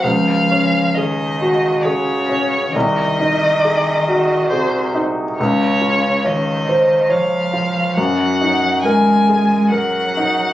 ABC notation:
X:1
M:3/4
L:1/8
Q:1/4=69
K:Db
V:1 name="Violin"
f2 e2 d2 | e4 c z | d2 e2 f2 | g2 a2 g2 |]
V:2 name="Grand piano"
D,, D A G A D | C,, E A G A E | D,, F d c d F | G,, E B A B E |]
V:3 name="Cello" clef=bass
F,2 E,2 D,2 | E,4 C, z | D,2 E,2 F,2 | G,2 A,2 G,2 |]